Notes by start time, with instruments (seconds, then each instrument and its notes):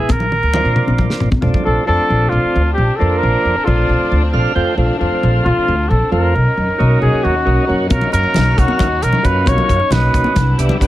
Already playing: tonewheel organ B3 E4, trumpet G#4
0.09 upright bass A#1, trumpet A#4, kick, closed hi-hat, high conga
0.20 low conga
0.32 high tom, low conga
0.43 upright bass D2, low conga
0.53 tonewheel organ F3 A#3 C4 D4, high tom, low conga
0.65 upright bass A#2, low conga
0.76 mid tom, low conga
0.87 upright bass A#1, high conga
0.98 kick, low conga
1.10 snare
1.20 upright bass A#1, mid tom, high conga
1.32 kick, high conga
1.41 upright bass A#1, tonewheel organ F3 A3 C4 D4, floor tom, low conga
1.54 kick, low conga
1.63 upright bass A#1, tonewheel organ F3 A3 C4 D4, string section C4 D4, trumpet A4
1.86 upright bass F2, tonewheel organ F3 A3 C4 D4, trumpet A4
1.99 muted upright bass stroke
2.10 upright bass A#1
2.29 upright bass A#1, trumpet F4
2.44 muted upright bass stroke
2.56 upright bass D2
2.73 trumpet G4
2.78 upright bass A#1
2.96 tonewheel organ F3 A#3 D4, trumpet A4
3.00 upright bass F2, tonewheel organ C4
3.18 trumpet A#4
3.23 upright bass A#1
3.45 upright bass F2
3.56 muted upright bass stroke
3.65 upright bass A#1, tonewheel organ F3 A3 C4 D4, trumpet F4
3.89 upright bass A#1
4.01 muted upright bass stroke
4.12 upright bass D2
4.32 upright bass A#1, tonewheel organ F3 A3 C4 D4 F5
4.55 upright bass F2, tonewheel organ F3 A3 C4 F4 G5
4.77 upright bass A#1, tonewheel organ F3 A3 C4 F4
4.99 upright bass F2, tonewheel organ F3 A3 C4 F4
5.11 muted upright bass stroke
5.23 upright bass A#1
5.44 upright bass A#1, trumpet F4
5.57 muted upright bass stroke
5.68 upright bass D2
5.89 upright bass A#1, trumpet A4
6.11 upright bass F2, tonewheel organ F3 A3 C4 F4, trumpet A#4
6.32 upright bass B1, string section C#4 D#4
6.57 upright bass F#2
6.70 muted upright bass stroke
6.78 upright bass B1, tonewheel organ F#3 A#3 C#4 D#4
7.01 upright bass B1, trumpet G#4
7.14 muted upright bass stroke
7.24 upright bass D#2, trumpet F#4
7.45 upright bass B1, tonewheel organ F#3 A#3 C#4 D#4
7.67 upright bass F#2, tonewheel organ F#3 A#3 C#4 F#4
7.89 upright bass B1, tonewheel organ F#3 A#3 C#4 F4, trumpet A#4, kick, closed hi-hat, high conga, low conga
8.01 low conga
8.11 upright bass F#2, tonewheel organ F#3 A#3 C#4 F5, trumpet A#4, closed hi-hat, low conga
8.24 muted upright bass stroke, low conga
8.34 upright bass B1, snare, closed hi-hat, low conga
8.46 low conga
8.56 upright bass B1, trumpet F#4, kick, closed hi-hat, low conga
8.68 muted upright bass stroke, high conga
8.79 upright bass D#2, kick, closed hi-hat, low conga
9.03 upright bass B1, trumpet A#4, closed hi-hat
9.13 low conga
9.23 upright bass F#2, tonewheel organ F#3 A#3 C#4 F4, trumpet B4, kick, closed hi-hat
9.46 upright bass B1, trumpet C#5, kick, closed hi-hat, high conga, low conga
9.58 low conga
9.69 upright bass F#2, kick, closed hi-hat, low conga
9.80 muted upright bass stroke, low conga
9.90 upright bass B1, tonewheel organ A#2 F#3 C#4 D#4, trumpet B4, snare, closed hi-hat, low conga
10.03 low conga
10.14 upright bass B1, kick, closed hi-hat, low conga
10.24 muted upright bass stroke, high conga
10.35 upright bass C2, string section C3 G3 B3 D4 E4, kick, snare, closed hi-hat, low conga
10.58 upright bass C2, tonewheel organ G3 B3 D4 E4, closed hi-hat
10.69 low conga
10.80 upright bass G2, tonewheel organ G3 B3 D4 F#4, kick, closed hi-hat